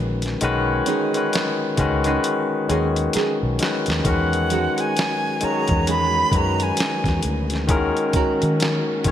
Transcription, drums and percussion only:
0.22 snare, closed hi-hat
0.41 closed hi-hat
0.86 closed hi-hat
1.14 closed hi-hat
1.33 snare, closed hi-hat
1.77 kick, closed hi-hat
2.04 closed hi-hat
2.24 closed hi-hat
2.70 closed hi-hat
2.96 closed hi-hat
3.13 snare, closed hi-hat
3.59 snare, closed hi-hat
3.86 closed hi-hat
3.90 snare
4.05 kick, closed hi-hat
4.33 closed hi-hat
4.50 closed hi-hat
4.78 closed hi-hat
4.97 snare, closed hi-hat
5.41 closed hi-hat
5.68 kick, closed hi-hat
5.87 closed hi-hat
6.32 kick, closed hi-hat
6.60 closed hi-hat
6.77 snare, closed hi-hat
7.04 kick, snare, closed hi-hat
7.23 closed hi-hat
7.50 snare, closed hi-hat
7.69 kick, closed hi-hat
7.97 closed hi-hat
8.13 kick, closed hi-hat
8.42 closed hi-hat
8.60 snare, closed hi-hat
9.04 kick, closed hi-hat

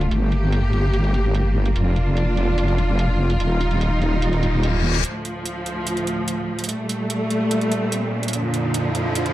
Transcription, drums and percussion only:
0.01 closed hi-hat
0.11 closed hi-hat
0.32 closed hi-hat
0.52 closed hi-hat
0.73 closed hi-hat
0.93 closed hi-hat
1.04 closed hi-hat
1.14 closed hi-hat
1.35 closed hi-hat
1.65 closed hi-hat
1.76 closed hi-hat
1.96 closed hi-hat
2.17 closed hi-hat
2.37 closed hi-hat
2.58 closed hi-hat
2.68 closed hi-hat
2.78 closed hi-hat
2.99 closed hi-hat
3.30 closed hi-hat
3.40 closed hi-hat
3.61 closed hi-hat
3.71 closed hi-hat
3.81 closed hi-hat
4.02 closed hi-hat
4.22 closed hi-hat
4.33 closed hi-hat
4.43 closed hi-hat
4.63 closed hi-hat
4.94 closed hi-hat
5.04 closed hi-hat
5.25 closed hi-hat
5.46 closed hi-hat
5.66 closed hi-hat
5.87 closed hi-hat
5.97 closed hi-hat
6.07 closed hi-hat
6.28 closed hi-hat
6.59 closed hi-hat
6.64 closed hi-hat
6.69 closed hi-hat
6.89 closed hi-hat
7.10 closed hi-hat
7.30 closed hi-hat
7.51 closed hi-hat
7.61 closed hi-hat
7.72 closed hi-hat
7.92 closed hi-hat
8.23 closed hi-hat
8.28 closed hi-hat
8.33 closed hi-hat
8.54 closed hi-hat
8.74 closed hi-hat
8.95 closed hi-hat
9.15 closed hi-hat
9.26 closed hi-hat

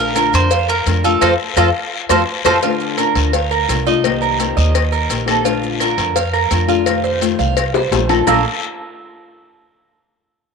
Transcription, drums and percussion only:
0.16 cowbell, short guiro, claves, maracas
0.33 cowbell, short guiro, maracas
0.51 cowbell, long guiro, maracas
0.68 claves, maracas
0.86 cowbell, short guiro, maracas
1.04 short guiro, maracas
1.22 cowbell, long guiro, claves, maracas
1.57 cowbell, long guiro, claves, maracas
2.09 cowbell, long guiro, claves, maracas
2.45 cowbell, long guiro, claves, maracas
2.63 cowbell, long guiro, maracas
2.80 maracas
2.98 cowbell, short guiro, claves, maracas
3.15 cowbell, short guiro, maracas
3.33 cowbell, long guiro, maracas
3.51 claves, maracas
3.69 cowbell, short guiro, maracas
3.87 short guiro, maracas
4.04 cowbell, long guiro, claves, maracas
4.23 maracas
4.40 cowbell, short guiro, maracas
4.58 short guiro, maracas
4.75 cowbell, long guiro, claves, maracas
4.93 maracas
5.10 cowbell, short guiro, maracas
5.28 cowbell, short guiro, claves, maracas
5.45 cowbell, long guiro, maracas
5.63 maracas
5.80 cowbell, short guiro, claves, maracas
5.98 cowbell, short guiro, maracas
6.16 cowbell, long guiro, maracas
6.33 claves, maracas
6.51 cowbell, short guiro, maracas
6.69 short guiro, maracas
6.86 cowbell, long guiro, claves, maracas
7.04 maracas
7.21 cowbell, short guiro, maracas
7.39 short guiro, maracas
7.57 cowbell, long guiro, claves, maracas
7.74 high bongo, maracas
7.92 cowbell, high bongo, short guiro, maracas
8.09 cowbell, low bongo, short guiro, claves, maracas
8.27 low bongo, long guiro, claves, maracas

